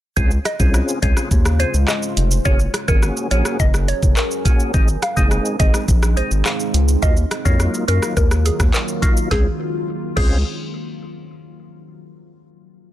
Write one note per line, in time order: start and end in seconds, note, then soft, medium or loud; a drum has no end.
0.17 0.39 C#2 loud
0.17 2.43 C#3 medium
0.17 2.43 G#3 medium
0.17 0.31 C4 medium
0.17 0.31 C#4 medium
0.17 2.43 F4 loud
0.17 0.31 F4 medium
0.17 0.32 G#4 loud
0.17 2.43 C5 medium
0.17 kick loud
0.17 shaker medium
0.31 shaker medium
0.45 0.56 D#5 medium
0.45 cross-stick loud
0.45 closed hi-hat medium
0.45 shaker medium
0.59 0.82 C2 medium
0.59 0.99 C4 medium
0.59 0.99 C#4 medium
0.59 0.99 F4 medium
0.59 0.99 G#4 medium
0.59 kick medium
0.59 shaker medium
0.74 cross-stick medium
0.74 shaker medium
0.88 shaker medium
1.02 1.14 C#2 medium
1.02 1.29 C4 medium
1.02 1.29 C#4 medium
1.02 1.29 F4 medium
1.02 1.29 G#4 medium
1.02 1.24 C#5 medium
1.02 kick loud
1.02 closed hi-hat medium
1.02 shaker medium
1.17 cross-stick medium
1.17 shaker medium
1.31 1.64 D#2 loud
1.31 kick medium
1.31 shaker medium
1.45 cross-stick loud
1.45 shaker medium
1.59 1.74 C4 medium
1.59 1.74 C#4 medium
1.59 1.74 F4 medium
1.59 1.74 G#4 medium
1.59 1.70 C5 medium
1.59 closed hi-hat medium
1.59 shaker medium
1.74 1.85 C#2 medium
1.74 shaker medium
1.88 2.29 D#5 medium
1.88 cross-stick medium
1.88 clap medium
1.88 shaker medium
2.02 shaker medium
2.17 2.39 F1 loud
2.17 closed hi-hat medium
2.17 shaker medium
2.31 shaker medium
2.45 2.68 F#1 loud
2.45 4.72 F#3 medium
2.45 2.60 A#3 medium
2.45 4.72 C#4 medium
2.45 2.60 C#4 medium
2.45 2.60 F#4 medium
2.45 4.72 G#4 medium
2.45 2.60 G#4 loud
2.45 4.72 A#4 medium
2.45 2.56 C#5 loud
2.45 kick loud
2.45 shaker medium
2.59 shaker medium
2.74 cross-stick loud
2.74 closed hi-hat medium
2.74 shaker medium
2.88 3.10 G#1 medium
2.88 3.28 A#3 medium
2.88 3.28 C#4 medium
2.88 3.28 F#4 medium
2.88 3.28 G#4 medium
2.88 3.09 A#4 medium
2.88 kick medium
2.88 shaker medium
3.03 cross-stick medium
3.03 shaker medium
3.17 shaker medium
3.31 3.42 A#1 medium
3.31 3.57 A#3 medium
3.31 3.57 C#4 medium
3.31 3.57 F#4 medium
3.31 3.58 G#4 medium
3.31 3.52 C#5 medium
3.31 closed hi-hat medium
3.31 shaker medium
3.45 cross-stick loud
3.45 shaker medium
3.60 3.93 F#1 medium
3.60 3.70 D#5 medium
3.60 kick medium
3.60 shaker medium
3.74 cross-stick medium
3.74 shaker medium
3.88 3.99 C#5 medium
3.88 closed hi-hat medium
3.88 shaker medium
4.03 4.14 F#1 medium
4.03 kick loud
4.03 shaker medium
4.17 4.57 A#4 medium
4.17 clap loud
4.17 shaker medium
4.31 shaker medium
4.45 4.72 A#3 medium
4.45 4.72 C#4 medium
4.45 4.72 F#4 medium
4.45 4.72 G#4 medium
4.45 kick loud
4.45 closed hi-hat medium
4.45 shaker medium
4.60 shaker medium
4.74 4.96 G#1 loud
4.74 4.88 G#3 medium
4.74 7.00 G#3 medium
4.74 4.88 C4 medium
4.74 7.00 C4 medium
4.74 7.00 D#4 loud
4.74 4.89 D#4 medium
4.74 4.89 G#4 loud
4.74 kick loud
4.74 shaker medium
4.88 shaker medium
5.02 5.13 F5 medium
5.02 cross-stick loud
5.02 closed hi-hat medium
5.02 shaker medium
5.16 5.39 F#1 loud
5.16 5.56 G#3 medium
5.16 5.56 C4 medium
5.16 5.56 D#4 medium
5.16 5.56 G#4 medium
5.16 kick medium
5.16 shaker medium
5.31 cross-stick medium
5.31 shaker medium
5.45 shaker medium
5.59 5.71 G#1 loud
5.59 5.86 G#3 medium
5.59 5.86 C4 medium
5.59 5.86 D#4 medium
5.59 5.86 G#4 medium
5.59 5.81 D#5 medium
5.59 kick loud
5.59 closed hi-hat medium
5.59 shaker medium
5.74 cross-stick loud
5.74 shaker medium
5.88 6.21 A#1 loud
5.88 kick medium
5.88 shaker medium
6.03 cross-stick medium
6.03 shaker medium
6.16 6.31 G#3 medium
6.16 6.31 C4 medium
6.16 6.31 D#4 medium
6.16 6.32 G#4 medium
6.16 6.28 C5 medium
6.16 closed hi-hat medium
6.16 shaker medium
6.31 6.42 G#1 medium
6.31 shaker medium
6.46 6.86 F5 medium
6.46 cross-stick loud
6.46 clap loud
6.46 shaker medium
6.60 shaker medium
6.74 6.96 C#2 loud
6.74 closed hi-hat medium
6.74 shaker medium
6.88 shaker medium
7.02 7.25 D#2 loud
7.02 9.29 D#3 medium
7.02 7.17 F#3 loud
7.02 9.29 F#3 loud
7.02 7.17 A#3 medium
7.02 9.29 A#3 medium
7.02 7.17 D#4 medium
7.02 9.29 F4 medium
7.02 7.17 F4 loud
7.02 7.13 D#5 loud
7.02 kick loud
7.02 shaker medium
7.17 shaker medium
7.31 cross-stick loud
7.31 closed hi-hat medium
7.31 shaker medium
7.45 7.68 F2 medium
7.45 7.85 F#3 medium
7.45 7.85 A#3 medium
7.45 7.85 D#4 medium
7.45 7.85 F4 medium
7.45 7.67 C#5 medium
7.45 kick medium
7.45 shaker medium
7.60 cross-stick medium
7.60 shaker medium
7.74 shaker medium
7.88 7.99 F#2 medium
7.88 8.14 F#3 medium
7.88 8.14 A#3 medium
7.88 8.14 D#4 medium
7.88 8.15 F4 medium
7.88 8.09 A#4 medium
7.88 closed hi-hat medium
7.88 shaker medium
8.02 cross-stick loud
8.02 shaker medium
8.17 8.50 D#2 loud
8.17 8.27 A#4 medium
8.17 kick medium
8.17 shaker medium
8.31 cross-stick medium
8.31 shaker medium
8.45 8.56 G#4 medium
8.45 closed hi-hat medium
8.45 shaker medium
8.60 8.71 D#2 loud
8.60 kick loud
8.60 cross-stick loud
8.60 shaker medium
8.74 9.14 A#4 medium
8.74 clap medium
8.74 shaker medium
8.88 shaker medium
9.02 9.29 F#3 medium
9.02 9.29 A#3 medium
9.02 9.29 D#4 medium
9.02 9.29 F4 medium
9.02 kick loud
9.02 closed hi-hat medium
9.02 shaker medium
9.17 shaker medium
9.31 9.47 C#2 loud
9.31 9.47 G#3 medium
9.31 9.47 C4 medium
9.31 9.47 C#4 medium
9.31 9.47 F4 loud
9.31 9.47 G#4 medium
9.31 kick loud
9.31 snare medium
10.16 10.43 C#2 loud
10.16 10.38 G#3 medium
10.16 10.38 C4 medium
10.16 10.38 C#4 medium
10.16 10.38 F4 loud
10.16 10.43 G#4 medium
10.16 kick loud
10.16 crash medium